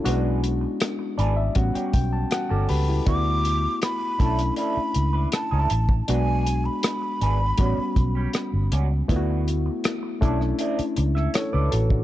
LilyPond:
<<
  \new Staff \with { instrumentName = "Flute" } { \time 4/4 \key d \major \tempo 4 = 80 r1 | d'''4 b''4 b''4 a''4 | gis''8. b''2~ b''8. r8 | r1 | }
  \new Staff \with { instrumentName = "Clean electric guitar" } { \time 4/4 \key d \major <d' gis' b'>8 r4 <d' gis' b'>16 r8 <g cis' fis'>16 r8. <g cis' fis'>16 r8 | <d' fis' b'>8 r4 <d' e' a'>16 r16 <d' e' a'>16 r8 <d' e' b'>16 r16 <d' e' a'>16 r8 | <d' gis' b'>8 r4 <d' gis' b'>16 r16 <g cis' fis'>16 r8 <g cis' g'>16 r8 <g cis' fis'>16 r16 | <d' fis' b'>8 r4 <e' a' d''>16 r16 <e' a' d''>16 r8 <e' a' e''>16 r16 <e' a' d''>16 r8 | }
  \new Staff \with { instrumentName = "Reed electric piano" } { \time 4/4 \key d \major << { <cis' e'>16 r4 r16 d''16 e''16 fis''16 g''16 g''16 a''16 <fis' fis''>16 <fis' a' a''>16 <g' b' b''>16 <e' g'>16~ | <e' g'>16 r2. r8. | r1 | r2. <a' cis''>16 b'16 <fis' a'>16 <d' fis'>16 | } \\ { <g gis b d' fis'>4. r8 <g b cis' fis'>4. r8 | <a b e' fis'>4. <a cis' d' e'>4. r4 | <gis b d' fis'>4. r8 <g b cis' fis'>4. r8 | <a b e' f' fis'>4. <a cis' d' e'>4. r4 | } >> }
  \new Staff \with { instrumentName = "Fingered electric bass" } { \clef bass \time 4/4 \key d \major b,,4 r8 gis,,8 a,,16 r16 b,,8 r16 g,,16 cis,8 | d,4 r8 b,,8 r8 cis,8 r16 cis,16 a,,8 | b,,4 r8 gis,,8 a,,16 r16 b,,8 r16 g,,16 cis,8 | d,4 r8 b,,8 r8 cis,8 r16 cis,16 a,,8 | }
  \new DrumStaff \with { instrumentName = "Drums" } \drummode { \time 4/4 hh8 hh8 <hh ss>8 hh8 <hh bd>16 hh16 <hh bd>8 <hh ss>8 hho8 | <hh bd>8 hh8 <hh ss>8 <hh bd>16 <hh ss>16 hh8 hh8 <hh ss>8 hh16 bd16 | hh8 hh8 <hh ss>8 hh8 <hh bd>8 <hh bd>8 <hh ss>8 hh8 | <hh bd>8 hh8 <hh ss>8 <hh bd>16 ss16 hh16 hh16 hh16 ss16 <hh ss>8 hh16 bd16 | }
>>